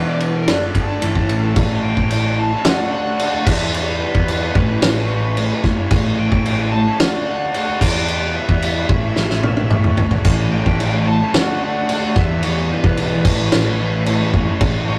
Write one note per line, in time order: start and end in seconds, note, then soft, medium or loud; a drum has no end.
0.00 0.46 E2 medium
0.00 0.46 B2 medium
0.00 0.19 E3 medium
0.00 0.47 E3 medium
0.00 0.20 G3 loud
0.00 0.21 B3 medium
0.00 0.22 E4 loud
0.09 0.22 D5 medium
0.20 0.46 E3 medium
0.20 0.35 G3 medium
0.20 0.34 B3 medium
0.20 0.34 E4 medium
0.20 0.37 B4 medium
0.20 ride medium
0.35 0.49 A#4 medium
0.35 muted clean electric guitar stroke medium
0.47 0.70 F#1 loud
0.47 1.00 D3 medium
0.47 0.73 F#3 medium
0.47 0.64 A3 medium
0.47 1.01 A3 medium
0.47 0.62 D4 medium
0.47 1.02 D4 medium
0.47 0.60 F#4 loud
0.47 0.76 A4 medium
0.47 snare loud
0.47 ride loud
0.61 0.75 A3 medium
0.61 0.76 D4 medium
0.61 0.77 F#4 medium
0.75 0.97 G1 medium
0.75 1.00 F#3 medium
0.75 0.89 A3 medium
0.75 0.88 D4 medium
0.75 0.88 F#4 medium
0.75 1.56 A4 loud
0.75 kick medium
0.75 ride medium
0.89 muted clean electric guitar stroke soft
1.01 1.27 G1 medium
1.01 1.54 A2 loud
1.01 1.43 A2 medium
1.01 1.43 E3 medium
1.01 1.55 E3 loud
1.01 1.17 A3 loud
1.01 1.56 A3 loud
1.01 1.16 C#4 medium
1.01 ride medium
1.05 1.14 E4 medium
1.15 1.44 A3 medium
1.15 1.43 C#4 medium
1.15 1.41 E4 medium
1.15 kick medium
1.29 1.54 A1 medium
1.29 ride medium
1.42 1.56 A3 medium
1.42 1.56 C#4 medium
1.42 1.54 E4 medium
1.56 1.79 A1 loud
1.56 2.09 A2 medium
1.56 2.10 E3 loud
1.56 1.99 A3 medium
1.56 1.98 C#4 medium
1.56 1.97 E4 loud
1.56 1.96 A4 loud
1.56 kick loud
1.56 crash medium
1.83 1.95 A1 medium
1.83 2.08 G5 loud
1.97 2.53 A1 medium
1.97 2.10 A3 medium
1.97 2.11 C#4 medium
1.97 2.12 E4 medium
1.97 2.12 A4 medium
1.97 kick medium
2.10 2.51 A2 medium
2.10 2.52 E3 loud
2.10 2.25 A3 loud
2.10 2.25 C#4 medium
2.10 2.24 E4 loud
2.10 2.22 A4 loud
2.10 2.39 G5 loud
2.10 crash medium
2.23 2.37 A3 medium
2.23 2.37 C#4 medium
2.23 2.37 E4 medium
2.23 2.38 A4 medium
2.38 2.66 A5 loud
2.38 muted overdriven electric guitar stroke soft
2.51 2.64 A3 medium
2.51 2.65 C#4 medium
2.51 2.64 E4 medium
2.51 2.63 A4 medium
2.64 3.31 D2 loud
2.64 3.06 D3 loud
2.64 2.91 A3 loud
2.64 2.81 D4 loud
2.64 2.79 F#4 medium
2.64 2.77 A4 loud
2.64 2.90 F#5 loud
2.64 snare loud
2.64 crash medium
2.78 2.92 D4 medium
2.78 2.93 F#4 medium
2.78 2.94 A4 medium
2.92 3.19 A3 medium
2.92 3.20 D4 medium
2.92 3.21 F#4 medium
2.92 3.21 A4 medium
2.92 3.16 F#5 loud
3.17 3.45 D3 loud
3.17 3.45 A3 loud
3.17 3.46 F#5 medium
3.17 crash medium
3.21 3.35 D4 loud
3.21 3.33 F#4 loud
3.21 3.32 A4 loud
3.33 3.47 D4 medium
3.33 3.46 F#4 medium
3.33 3.45 A4 medium
3.45 4.02 E2 medium
3.45 3.72 E3 medium
3.45 3.62 G3 loud
3.45 3.61 B3 medium
3.45 3.72 E5 medium
3.45 kick loud
3.45 snare soft
3.45 crash loud
3.49 3.59 E4 medium
3.60 3.73 G3 medium
3.60 3.74 B3 medium
3.60 3.75 E4 medium
3.73 4.27 E3 loud
3.73 4.16 G3 loud
3.73 4.15 B3 loud
3.73 4.13 E4 loud
3.73 3.80 C#5 medium
3.73 crash medium
4.00 5.60 B4 medium
4.14 4.48 E2 medium
4.14 4.28 G3 medium
4.14 4.29 B3 medium
4.14 4.30 E4 medium
4.14 kick medium
4.28 4.53 E3 loud
4.28 4.43 G3 medium
4.28 4.42 B3 medium
4.28 4.40 E4 loud
4.28 crash medium
4.41 4.55 G3 medium
4.41 4.54 B3 medium
4.41 4.53 E4 medium
4.55 4.77 A1 medium
4.55 4.96 A2 loud
4.55 4.97 E3 loud
4.55 4.71 A3 loud
4.55 4.69 C#4 medium
4.55 4.67 E4 loud
4.55 kick loud
4.69 4.98 A3 medium
4.69 4.97 C#4 medium
4.69 4.95 E4 medium
4.82 5.49 A1 loud
4.82 snare loud
4.82 crash medium
4.96 5.10 A3 medium
4.96 5.11 C#4 medium
4.96 5.12 E4 medium
5.10 5.36 E3 medium
5.10 5.37 A3 medium
5.10 5.38 C#4 medium
5.10 5.39 E4 medium
5.37 5.77 A2 loud
5.37 5.62 E3 loud
5.37 5.52 A3 loud
5.37 5.51 C#4 loud
5.37 5.49 E4 loud
5.37 crash medium
5.51 5.64 A3 medium
5.51 5.65 C#4 medium
5.51 5.66 E4 medium
5.64 5.86 F#1 loud
5.64 5.89 E3 medium
5.64 5.79 A3 medium
5.64 5.77 C#4 medium
5.64 5.76 E4 medium
5.64 kick medium
5.64 snare soft
5.77 5.90 A3 medium
5.77 5.90 C#4 medium
5.77 5.89 E4 medium
5.90 6.13 A1 loud
5.90 6.43 A2 loud
5.90 6.44 E3 loud
5.90 6.33 A3 loud
5.90 6.31 C#4 loud
5.90 6.30 E4 loud
5.90 kick loud
5.90 crash medium
6.18 6.29 A1 loud
6.18 6.71 G5 loud
6.31 6.87 A1 medium
6.31 6.45 A3 medium
6.31 6.45 C#4 medium
6.31 6.46 E4 medium
6.31 kick medium
6.44 6.85 A2 loud
6.44 6.72 E3 loud
6.44 6.60 A3 loud
6.44 6.58 C#4 loud
6.44 6.56 E4 loud
6.44 crash medium
6.57 6.72 A3 medium
6.57 6.72 C#4 medium
6.57 6.73 E4 medium
6.72 6.97 A5 loud
6.72 muted overdriven electric guitar stroke soft
6.85 6.99 A3 medium
6.85 6.99 C#4 medium
6.85 6.98 E4 medium
6.98 7.66 D2 loud
6.98 7.24 D3 loud
6.98 7.15 A3 loud
6.98 7.13 D4 medium
6.98 7.12 F#4 loud
6.98 7.07 F#5 loud
6.98 snare loud
6.98 crash medium
7.13 7.25 A3 medium
7.13 7.26 D4 medium
7.13 7.27 F#4 medium
7.25 7.51 D3 medium
7.25 7.52 A3 medium
7.25 7.53 D4 medium
7.25 7.54 F#4 medium
7.25 7.54 F#5 loud
7.52 7.79 D3 loud
7.52 7.68 A3 loud
7.52 7.67 D4 loud
7.52 7.64 F#4 loud
7.52 7.80 F#5 loud
7.52 crash medium
7.66 7.80 A3 medium
7.66 7.80 D4 medium
7.66 7.79 F#4 medium
7.79 8.37 E2 medium
7.79 8.05 E3 medium
7.79 7.95 G3 loud
7.79 7.94 B3 medium
7.79 7.92 E4 loud
7.79 8.07 G5 loud
7.79 kick loud
7.79 snare soft
7.79 crash loud
7.93 8.06 G3 medium
7.93 8.07 B3 medium
7.93 8.08 E4 medium
8.06 8.60 E3 loud
8.06 8.50 G3 loud
8.06 8.49 B3 loud
8.06 8.47 E4 loud
8.06 8.36 G5 loud
8.06 crash medium
8.36 9.95 E5 medium
8.48 8.82 E2 medium
8.48 8.61 G3 medium
8.48 8.62 B3 medium
8.48 8.63 E4 medium
8.48 kick medium
8.61 8.87 E3 loud
8.61 8.77 G3 loud
8.61 8.76 B3 loud
8.61 8.74 E4 loud
8.61 crash medium
8.75 8.89 G3 medium
8.75 8.88 B3 medium
8.75 8.88 E4 medium
8.88 9.12 A1 medium
8.88 9.30 A2 medium
8.88 9.30 E3 medium
8.88 9.04 A3 loud
8.88 9.03 C#4 loud
8.88 9.01 E4 loud
8.88 kick loud
9.02 9.31 A3 medium
9.02 9.29 C#4 medium
9.02 9.28 E4 medium
9.16 9.83 A1 loud
9.16 snare medium
9.29 9.43 A3 medium
9.29 9.44 C#4 medium
9.29 9.44 E4 medium
9.29 snare medium
9.42 9.69 E3 medium
9.42 9.70 A3 medium
9.42 9.71 C#4 medium
9.42 9.72 E4 medium
9.42 high tom medium
9.57 high tom medium
9.69 10.11 A2 loud
9.69 9.95 E3 medium
9.69 9.86 A3 loud
9.69 9.84 C#4 loud
9.69 9.83 E4 loud
9.69 mid tom loud
9.84 9.97 A3 medium
9.84 9.98 C#4 medium
9.84 9.99 E4 medium
9.84 mid tom medium
9.96 10.20 F#1 medium
9.96 10.23 E3 medium
9.96 10.12 A3 medium
9.96 10.11 C#4 medium
9.96 10.09 E4 medium
9.96 floor tom loud
10.10 10.24 A3 medium
10.10 10.24 C#4 medium
10.10 10.23 E4 medium
10.10 floor tom loud
10.24 10.47 A1 loud
10.24 10.77 A2 medium
10.24 10.78 E3 medium
10.24 10.68 A3 loud
10.24 10.66 C#4 loud
10.24 10.64 E4 loud
10.24 10.54 A4 loud
10.24 kick loud
10.24 splash medium
10.24 crash medium
10.52 10.63 A1 medium
10.52 10.79 A3 medium
10.52 10.80 C#4 medium
10.52 10.80 E4 medium
10.52 10.80 A4 medium
10.52 11.07 G5 loud
10.65 11.22 A1 medium
10.65 10.79 A3 medium
10.65 10.80 C#4 medium
10.65 10.80 E4 medium
10.65 kick medium
10.78 11.20 A2 medium
10.78 11.05 E3 medium
10.78 10.94 A3 medium
10.78 10.93 C#4 loud
10.78 10.91 E4 loud
10.78 10.92 A4 loud
10.78 crash medium
10.92 11.06 A3 medium
10.92 11.06 C#4 medium
10.92 11.06 E4 medium
10.92 11.08 A4 medium
11.07 11.34 A5 loud
11.07 muted overdriven electric guitar stroke medium
11.07 muted distorted electric guitar stroke soft
11.20 11.34 A3 medium
11.20 11.33 C#4 medium
11.20 11.33 E4 medium
11.20 11.33 A4 medium
11.33 12.01 D2 loud
11.33 11.59 D3 medium
11.33 11.49 A3 loud
11.33 11.48 D4 medium
11.33 11.47 A4 loud
11.33 11.60 F#5 loud
11.33 snare loud
11.33 crash medium
11.37 11.47 F#4 loud
11.48 11.61 A3 medium
11.48 11.62 D4 medium
11.48 11.63 F#4 medium
11.48 11.63 A4 medium
11.61 11.87 D3 medium
11.61 11.88 A3 medium
11.61 11.89 D4 medium
11.61 11.90 F#4 medium
11.61 11.90 A4 medium
11.61 11.89 F#5 loud
11.88 12.14 D3 loud
11.88 12.04 A3 loud
11.88 12.02 D4 loud
11.88 12.01 F#4 loud
11.88 12.02 A4 loud
11.88 12.18 F#5 loud
11.88 crash medium
12.02 12.16 A3 medium
12.02 12.15 D4 medium
12.02 12.14 F#4 medium
12.02 12.15 A4 medium
12.16 12.72 E2 medium
12.16 12.41 E3 loud
12.16 12.31 G3 medium
12.16 12.30 B3 loud
12.16 12.28 E4 loud
12.16 12.44 E5 medium
12.16 kick loud
12.16 snare soft
12.29 12.43 G3 medium
12.29 12.43 B3 medium
12.29 12.44 E4 medium
12.42 12.96 E3 loud
12.42 12.86 G3 loud
12.42 12.84 B3 loud
12.42 12.83 E4 loud
12.42 12.72 C#5 loud
12.42 crash medium
12.70 12.97 E3 medium
12.70 12.97 G3 medium
12.70 12.98 B3 medium
12.70 12.98 E4 medium
12.70 14.30 B4 medium
12.84 13.18 B1 medium
12.84 12.97 G3 medium
12.84 12.98 B3 medium
12.84 12.99 E4 medium
12.84 kick medium
12.97 13.23 E3 loud
12.97 13.13 G3 loud
12.97 13.11 B3 loud
12.97 13.10 E4 loud
12.97 crash medium
13.11 13.25 G3 medium
13.11 13.24 B3 medium
13.11 13.23 E4 medium
13.25 13.47 A1 medium
13.25 13.66 A2 medium
13.25 13.66 E3 loud
13.25 13.40 A3 loud
13.25 13.39 C#4 loud
13.25 13.38 E4 loud
13.25 kick loud
13.25 crash loud
13.39 13.68 A3 medium
13.39 13.66 C#4 medium
13.39 13.65 E4 medium
13.52 14.19 A1 loud
13.52 snare loud
13.52 crash medium
13.66 13.79 A3 medium
13.66 13.80 C#4 medium
13.66 13.81 E4 medium
13.79 14.05 E3 medium
13.79 14.06 A3 medium
13.79 14.07 C#4 medium
13.79 14.08 E4 medium
14.06 14.47 A2 loud
14.06 14.32 E3 loud
14.06 14.21 A3 loud
14.06 14.20 C#4 loud
14.06 14.18 E4 loud
14.06 crash medium
14.19 14.33 A3 medium
14.19 14.34 C#4 medium
14.19 14.35 E4 medium
14.33 14.56 F#1 loud
14.33 14.59 E3 medium
14.33 14.48 A3 medium
14.33 14.47 C#4 loud
14.33 14.45 E4 medium
14.33 kick medium
14.46 14.60 A3 medium
14.46 14.60 C#4 medium
14.46 14.59 E4 medium
14.59 14.83 A1 loud
14.59 14.99 A2 loud
14.59 14.99 E3 loud
14.59 14.99 A3 loud
14.59 14.99 C#4 loud
14.59 14.99 E4 loud
14.59 kick loud
14.59 crash medium
14.88 14.99 A1 loud
14.88 14.99 E3 medium
14.88 14.99 A3 medium
14.88 14.99 C#4 medium
14.88 14.99 E4 loud
14.88 14.99 C#5 medium